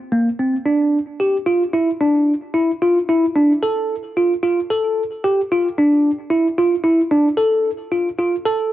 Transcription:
0.12 A#3
0.39 C4
0.66 D4
1.20 G4
1.46 F4
1.73 E4
2.01 D4
2.54 E4
2.82 F4
3.09 E4
3.36 D4
3.63 A4
4.17 F4
4.43 F4
4.70 A4
5.24 G4
5.52 F4
5.78 D4
6.30 E4
6.58 F4
6.84 E4
7.11 D4
7.37 A4
7.92 F4
8.19 F4
8.45 A4

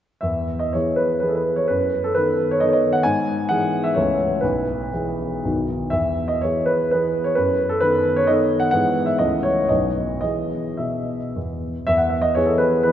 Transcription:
0.21 E2 E5
0.59 D#5
0.73 E3 B3 G#4 C#5
0.96 B4
1.20 E3 B3 G#4 B4
1.29 A4
1.35 B4
1.56 C#5
1.68 F#2 B4
2.04 A4
2.15 D#3 B3 A4 B4
2.51 C#5
2.60 D#3 B3 A4 D#5
2.69 C#5
2.73 D#5
2.93 F#5
3.03 G#2 G#5
3.49 E3 B3 G#4 F#5
3.84 E5
3.94 C#2 E3 A3 A4 C#5
4.41 B1 B4
4.93 E3 B3 G#4
5.45 B1 D#3 B3 F#4
5.90 E2 E5
6.28 D#5
6.41 E3 B3 G#4 C#5
6.66 B4
6.91 E3 B3 G#4 B4
7.24 C#5
7.35 F#2 B4
7.69 A4
7.80 D#3 B3 A4 B4
8.16 C#5
8.27 D#3 B3 A4 D#5
8.60 F#5
8.71 G#2 E3 B3 G#4 F#5
9.06 E5
9.19 C#2 E3 A3 A4 D#5
9.43 C#5
9.69 B1 F#3 B3 F#4 D#5
10.21 E3 B3 G#4 D#5
10.77 B2 E5
11.36 E2
11.87 E2 E5
11.97 F#5
12.09 E5
12.22 D#5
12.35 E3 B3 G#4 C#5
12.46 A4
12.58 B4
12.83 E3 B3 G#4 B4

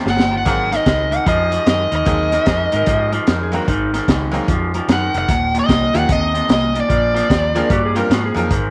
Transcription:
0.06 G1 D#2 A#2, snare
0.10 F#5
0.19 snare
0.31 D#2 A#2
0.37 F#5
0.45 G#1 G#2 D#3 F#3 A#3 C4 D#4 G#4, kick, closed hi-hat
0.72 G#2 D#3, snare, closed hi-hat
0.76 D#5
0.86 C#2 G#2 D#3, kick, snare, closed hi-hat
1.11 G#2 D#3, closed hi-hat
1.16 F#5
1.26 F2 G#2 F3 D#5, kick, closed hi-hat
1.51 G#2 F3, closed hi-hat
1.66 F#2 G#2 D#3 D#5, snare, closed hi-hat
1.92 D#2 G#2 D#3, closed hi-hat
1.96 D#5
2.05 D#2 G#2 D#3 F#3 A#3 C4 D#4 G#4, kick, closed hi-hat
2.32 G#2 D#3, snare, closed hi-hat
2.46 F2 G#2 D#3, kick, snare, closed hi-hat
2.72 G#2 D#3, closed hi-hat
2.76 A#4
2.86 G#2 F3 D#5, kick, closed hi-hat
3.12 G#2 F3, closed hi-hat
3.27 F2 G#2 D#3, snare, closed hi-hat
3.43 G#4
3.52 G#2 D#3 F#3 A#3 C4 D#4 A#4, closed hi-hat
3.56 F#4
3.68 G#1 G#2 D#3 D#4, kick, closed hi-hat
3.94 G#2 D#3, snare, closed hi-hat
4.08 C#2 G#2 D#3, kick, snare, closed hi-hat
4.32 G#2 D#3 F#3 A#3 C4 D#4 G#4, closed hi-hat
4.48 F2 G#2 F3, kick, closed hi-hat
4.74 G#2 F3, closed hi-hat
4.88 F#2 G#2 D#3, snare, closed hi-hat
4.92 F#5
5.14 F1 G#2 D#3 F#5, closed hi-hat
5.29 D#1 D#2 A#2, kick, closed hi-hat
5.54 D#2 A#2, closed hi-hat
5.59 D#5
5.69 C2 D#2 A#2, kick, snare, closed hi-hat
5.93 D#2 A#2 F3 A#3 C#4 D#4 G4, closed hi-hat
5.98 F#5
6.09 D#2 C3 D#5, kick, closed hi-hat
6.34 D#2 C3, closed hi-hat
6.49 C2 D#2 A#2 D#5, snare, closed hi-hat
6.74 D#2 A#2, closed hi-hat
6.80 D5
6.89 A#1 A#2 F3, kick, closed hi-hat
7.14 A#2 F3, snare, closed hi-hat
7.29 D#2 A#2 F3, kick, snare, closed hi-hat
7.54 A#2 F3 A#3 C4 D4 G#4, closed hi-hat
7.60 A#4
7.70 G2 A#2 G3 F#4, kick, closed hi-hat
7.85 G#4
7.95 A#2 F3 G3 A#3 C4 D4 A#4, closed hi-hat
7.99 A#4
8.10 G#2 A#2 F3 F#4, snare, closed hi-hat
8.26 G#4
8.35 F2 A#2 F3 F#3 A#3 C4 D#4 G#4, closed hi-hat
8.39 A#4
8.51 G#1 G#2 D#3 C5, kick, closed hi-hat

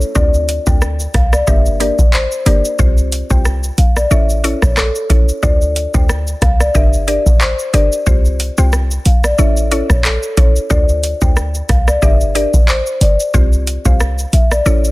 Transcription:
Already playing: downlifter
0.01 shaker
0.15 D2 C4 D4 F4 A4 D5, kick, shaker
0.34 shaker
0.49 closed hi-hat, shaker
0.67 D2 C4 D4 F4 A4 G5, kick, shaker
0.82 cross-stick, shaker
1.00 shaker
1.14 C2 F5, kick, cross-stick, closed hi-hat, shaker
1.33 D5, cross-stick, shaker
1.47 G1 A#3 D4 G4 A#4 E5, kick, shaker
1.66 shaker
1.80 A#3 D4 G4 A#4 D5, closed hi-hat, shaker
1.99 A1, kick, shaker
2.13 C5, clap, shaker
2.32 shaker
2.46 G1 A#3 D4 G4 A#4 D5, closed hi-hat, shaker
2.65 shaker
2.79 C2 C4 F4 G4 C5, kick, shaker
2.98 shaker
3.12 closed hi-hat, shaker
3.30 C2 C4 F4 G4 C5 G5, kick, shaker
3.45 cross-stick, shaker
3.63 shaker
3.78 A#1 F5, closed hi-hat, shaker
3.96 D5, cross-stick, shaker
4.11 A1 C#4 E4 A4 C#5 E5, shaker
4.30 shaker
4.44 C#4 E4 A4 C#5, closed hi-hat, shaker
4.62 A#1 C#5, kick, cross-stick, shaker
4.77 A4, cross-stick, clap, shaker
4.95 shaker
5.10 A1 C#4 E4 A4 C#5, kick, closed hi-hat, shaker
5.29 shaker
5.43 D2 D4 F4 A4 C5 D5, kick, shaker
5.62 shaker
5.76 closed hi-hat, shaker
5.94 D2 D4 F4 A4 C5 G5, kick, shaker
6.09 cross-stick, shaker
6.27 shaker
6.42 C2 F5, kick, cross-stick, closed hi-hat, shaker
6.60 D5, cross-stick, shaker
6.75 G1 D4 G4 A#4 D5 E5, kick, shaker
6.93 shaker
7.08 D4 G4 A#4 D5, closed hi-hat, shaker
7.26 A1, kick, shaker
7.41 C5, clap, shaker
7.59 shaker
7.73 G1 D4 G4 A#4 D5, closed hi-hat, shaker
7.92 shaker
8.06 C2 C4 F4 G4 C5, kick, shaker
8.25 shaker
8.40 closed hi-hat, shaker
8.58 C2 C4 F4 G4 C5 G5, shaker
8.73 cross-stick, shaker
8.91 shaker
9.05 A#1 F5, closed hi-hat, shaker
9.24 D5, cross-stick, shaker
9.38 A1 C#4 E4 A4 C#5 E5, shaker
9.57 shaker
9.71 C#4 E4 A4 C#5, closed hi-hat, shaker
9.90 A#1 C#5, kick, cross-stick, shaker
10.04 A4, clap, shaker
10.23 shaker
10.37 A1 C#4 E4 A4 C#5, kick, closed hi-hat, shaker
10.56 shaker
10.70 D2 D4 F4 A4 C5 D5, kick, shaker
10.89 shaker
11.04 closed hi-hat, shaker
11.21 D2 D4 F4 A4 C5 G5, kick, shaker
11.36 cross-stick, shaker
11.55 shaker
11.69 C2 F5, kick, cross-stick, closed hi-hat, shaker
11.88 D5, cross-stick, shaker
12.02 G1 D4 G4 A#4 D5 E5, kick, shaker
12.21 shaker
12.35 D4 G4 A#4 D5, closed hi-hat, shaker
12.54 A1, kick, shaker
12.68 C5, clap, shaker
12.87 shaker
13.01 G1 D5, closed hi-hat, shaker
13.20 shaker
13.34 C2 C4 F4 G4 C5, kick, shaker
13.53 shaker
13.67 closed hi-hat, shaker
13.85 C2 C4 F4 G4 C5 F5, kick, shaker
14.00 cross-stick, shaker
14.19 shaker
14.33 A#1 E5, closed hi-hat, shaker
14.52 D5, cross-stick, shaker
14.66 A1 C#4 E4 A4 C#5, shaker
14.85 shaker

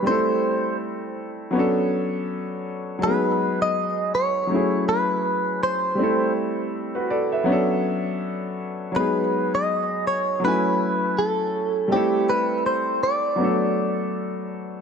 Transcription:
0.02 G3 A3
0.07 C4 E4 C5
0.11 A4
1.51 F#3 B3
1.55 C#4 D4
1.59 A4
2.99 F#3 G#3
3.03 A3 D#4 B4
3.07 B3 G#4
3.62 D#5
4.15 C#5
4.47 F#3 A3 C#4
4.53 E4 G#4
4.89 B4
5.63 C5
5.95 G3 A3
5.99 C4 E4
6.03 A4
6.95 F#4 B4
7.10 A4 D5
7.32 B4 E5
7.44 F#3 B3 C#4
7.50 D4 A4
8.92 F#3 G#3
8.96 B3 D#4 B4
9.00 G#4
9.55 D#5
10.07 C#5
10.40 F#3 A3 C#4
10.45 E4 B4 G#5
11.19 A4
11.88 G3 A3
11.92 C4 E4 G4
11.96 A4
12.29 B4
12.66 C5
13.03 D5
13.36 F#3 B3
13.40 A3 D4
13.44 A4

